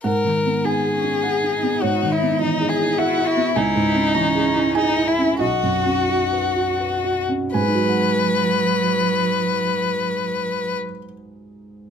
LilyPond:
<<
  \new Staff \with { instrumentName = "Violin" } { \time 3/4 \key gis \minor \tempo 4 = 90 ais'4 gis'2 | fis'8 e'8 dis'8 gis'8 fis'8 e'8 | dis'2 dis'8 e'8 | fis'2~ fis'8 r8 |
b'2.~ | b'2. | }
  \new Staff \with { instrumentName = "Felt piano" } { \time 3/4 \key gis \minor << { fis''4 gis''4 fis''4 | cis''4 dis''4 e''4 | gis''4 ais''4 gis''4 | dis''2~ dis''8 r8 |
<gis, gis dis' fis' b' fis'' gis''>2.~ | <gis, gis dis' fis' b' fis'' gis''>2. | } \\ { \tuplet 3/2 { gis,8 dis8 b8 dis'8 gis'8 dis'8 gis'8 dis'8 b8 } | \tuplet 3/2 { gis,8 dis8 b8 e8 gis'8 e'8 gis'8 e'8 b8 } | \tuplet 3/2 { cis,8 gis,8 cis'8 e8 gis'8 e'8 gis'8 e'8 cis'8 } | \tuplet 3/2 { b,,8 fis,8 cis'8 fis'8 b'8 fis'8 b'8 fis'8 cis'8 } |
r2. | r2. | } >> }
  \new Staff \with { instrumentName = "Cello" } { \time 3/4 \key gis \minor r4 b8 cis'8 dis'4~ | dis'2 e'8 fis'8 | e'4 cis'4 dis'8 e'8 | fis'2~ fis'8 r8 |
fis2.~ | fis2. | }
>>